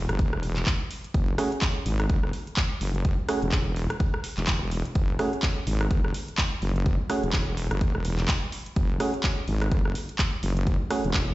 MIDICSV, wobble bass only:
0, 0, Header, 1, 2, 480
1, 0, Start_track
1, 0, Key_signature, 3, "minor"
1, 0, Tempo, 476190
1, 1153, Time_signature, 4, 2, 24, 8
1, 11432, End_track
2, 0, Start_track
2, 0, Title_t, "Wobble bass"
2, 0, Program_c, 0, 39
2, 92, Note_on_c, 0, 30, 100
2, 310, Note_off_c, 0, 30, 0
2, 332, Note_on_c, 0, 28, 98
2, 657, Note_off_c, 0, 28, 0
2, 1153, Note_on_c, 0, 30, 91
2, 1377, Note_off_c, 0, 30, 0
2, 1872, Note_on_c, 0, 32, 102
2, 2096, Note_off_c, 0, 32, 0
2, 2112, Note_on_c, 0, 30, 92
2, 2337, Note_off_c, 0, 30, 0
2, 2833, Note_on_c, 0, 30, 98
2, 3190, Note_off_c, 0, 30, 0
2, 3452, Note_on_c, 0, 28, 89
2, 3910, Note_off_c, 0, 28, 0
2, 4412, Note_on_c, 0, 28, 94
2, 4630, Note_off_c, 0, 28, 0
2, 4652, Note_on_c, 0, 28, 98
2, 4870, Note_off_c, 0, 28, 0
2, 4994, Note_on_c, 0, 30, 92
2, 5217, Note_off_c, 0, 30, 0
2, 5713, Note_on_c, 0, 32, 97
2, 5937, Note_off_c, 0, 32, 0
2, 5954, Note_on_c, 0, 30, 97
2, 6177, Note_off_c, 0, 30, 0
2, 6673, Note_on_c, 0, 30, 100
2, 7030, Note_off_c, 0, 30, 0
2, 7292, Note_on_c, 0, 28, 93
2, 7750, Note_off_c, 0, 28, 0
2, 7772, Note_on_c, 0, 30, 101
2, 7990, Note_off_c, 0, 30, 0
2, 8013, Note_on_c, 0, 28, 103
2, 8337, Note_off_c, 0, 28, 0
2, 8834, Note_on_c, 0, 30, 93
2, 9058, Note_off_c, 0, 30, 0
2, 9554, Note_on_c, 0, 32, 96
2, 9777, Note_off_c, 0, 32, 0
2, 9793, Note_on_c, 0, 30, 97
2, 10017, Note_off_c, 0, 30, 0
2, 10514, Note_on_c, 0, 30, 98
2, 10870, Note_off_c, 0, 30, 0
2, 11133, Note_on_c, 0, 28, 90
2, 11432, Note_off_c, 0, 28, 0
2, 11432, End_track
0, 0, End_of_file